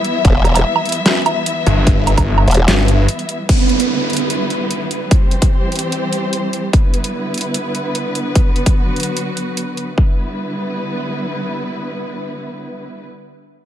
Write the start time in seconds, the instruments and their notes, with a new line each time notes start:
Already playing: string section E3 G3 B3 E4 E5
0.04 closed hi-hat
0.25 wobble bass E1, kick, closed hi-hat
0.45 closed hi-hat, low woodblock
0.55 closed hi-hat, low woodblock
0.76 low woodblock
0.86 closed hi-hat
0.89 closed hi-hat
0.92 closed hi-hat
1.06 snare, closed hi-hat
1.26 closed hi-hat, low woodblock
1.46 closed hi-hat
1.67 detuned saw bass G1, closed hi-hat
1.87 kick, closed hi-hat
2.07 closed hi-hat, low woodblock
2.18 kick, closed hi-hat, low woodblock
2.38 low woodblock
2.48 wobble bass E1, closed hi-hat
2.51 closed hi-hat
2.54 closed hi-hat
2.68 detuned saw bass G1, snare, closed hi-hat
2.88 closed hi-hat
3.09 closed hi-hat
3.19 closed hi-hat
3.29 closed hi-hat
3.49 string section D3 G3 B3 E4 B4, kick, closed hi-hat, crash, downlifter
3.69 closed hi-hat
3.80 closed hi-hat
4.10 closed hi-hat
4.13 closed hi-hat
4.17 closed hi-hat
4.30 closed hi-hat
4.50 closed hi-hat
4.71 closed hi-hat
4.91 closed hi-hat
5.11 string section E3 C4 G4 C5, kick, closed hi-hat
5.31 closed hi-hat
5.42 kick, closed hi-hat
5.72 closed hi-hat
5.75 closed hi-hat
5.79 closed hi-hat
5.92 closed hi-hat
6.13 closed hi-hat
6.33 closed hi-hat
6.53 closed hi-hat
6.73 string section D3 B3 E4 B4, kick, closed hi-hat
6.94 closed hi-hat
7.04 closed hi-hat
7.34 closed hi-hat
7.38 closed hi-hat
7.41 closed hi-hat
7.54 closed hi-hat
7.75 closed hi-hat
7.95 closed hi-hat
8.15 closed hi-hat
8.35 string section F#3 F#4, kick, closed hi-hat
8.56 closed hi-hat
8.66 kick, closed hi-hat
8.96 closed hi-hat
9.00 closed hi-hat
9.03 closed hi-hat
9.17 closed hi-hat
9.37 closed hi-hat
9.57 closed hi-hat
9.77 closed hi-hat
9.98 string section D3 G3 B3 E4 B4, kick